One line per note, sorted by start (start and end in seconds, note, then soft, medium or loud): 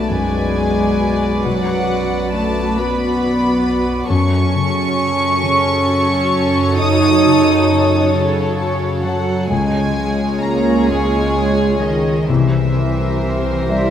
0.00 1.41 B1 soft
0.00 4.09 B1 soft
0.00 1.43 B2 soft
0.00 1.88 F#3 soft
0.00 4.06 F#3 soft
0.00 0.12 A3 soft
0.00 0.12 A3 medium
0.00 2.32 D4 soft
0.00 4.06 F#4 soft
0.00 4.05 B4 soft
0.00 4.09 D5 soft
0.00 0.11 A5 medium
0.10 4.08 F#2 soft
0.10 1.46 G#3 medium
0.10 0.98 B4 soft
0.10 1.45 G#5 medium
0.55 3.20 D5 soft
0.99 2.77 B4 soft
1.45 4.13 B2 medium
1.45 2.34 F#3 medium
1.45 2.34 F#5 medium
1.89 5.79 F#3 soft
2.33 2.77 A3 medium
2.33 2.78 A3 medium
2.33 4.13 D4 soft
2.33 2.77 A5 medium
2.78 4.10 B3 medium
2.78 3.65 B4 soft
2.78 4.10 B5 medium
3.22 4.13 D5 soft
3.66 4.13 B4 soft
4.08 9.47 F#2 medium
4.08 6.78 F#2 medium
4.08 6.75 F#2 medium
4.08 9.47 F#3 medium
4.08 6.75 C#4 medium
4.08 6.61 C#4 medium
4.08 9.48 F#4 medium
4.08 9.47 A4 medium
4.08 9.47 C#5 medium
4.08 6.75 C#6 medium
4.54 7.24 C#3 soft
4.99 7.69 C#4 soft
5.43 9.51 C#3 soft
5.43 6.33 A4 soft
5.89 8.59 C#5 soft
6.34 8.14 A4 soft
6.78 9.55 F#2 medium
6.78 8.13 D#4 medium
6.78 8.16 D#4 medium
6.78 8.13 D#6 loud
7.25 9.50 C#3 soft
7.70 10.42 C#4 soft
8.15 9.05 C#3 medium
8.15 9.04 C#3 medium
8.15 9.04 A4 soft
8.15 9.06 C#5 medium
8.61 11.34 C#5 soft
9.04 9.50 F#3 medium
9.04 9.51 F#3 medium
9.04 9.55 A4 soft
9.04 9.51 F#5 medium
9.49 12.28 C#2 medium
9.49 12.25 C#2 medium
9.49 12.32 C#3 medium
9.49 10.39 G#3 medium
9.49 10.42 G#3 medium
9.49 12.25 G#3 medium
9.49 12.25 F4 medium
9.49 12.24 G#4 medium
9.49 12.24 C#5 medium
9.49 10.40 G#5 medium
9.97 12.33 G#3 soft
10.42 10.89 A#3 medium
10.42 12.33 C#4 soft
10.42 10.88 A#5 medium
10.88 11.82 G#3 medium
10.88 12.25 F4 soft
10.88 12.25 G#4 soft
10.88 11.81 G#4 soft
10.88 11.82 G#5 medium
11.35 12.33 C#5 soft
11.81 12.28 D#3 medium
11.81 12.33 G#4 soft
11.81 12.29 D#5 medium
12.28 13.90 C2 medium
12.28 13.90 C2 soft
12.28 13.90 C3 medium
12.28 13.90 E3 soft
12.28 13.50 E3 soft
12.28 13.90 C4 medium
12.28 13.90 G4 medium
12.28 13.90 A#4 medium
12.28 13.90 C5 medium
12.28 13.67 E5 medium
12.75 13.90 G3 soft
13.22 13.90 A#3 soft
13.67 13.90 G3 medium
13.67 13.90 G3 soft
13.67 13.90 E4 medium
13.67 13.90 C5 soft
13.67 13.90 E5 medium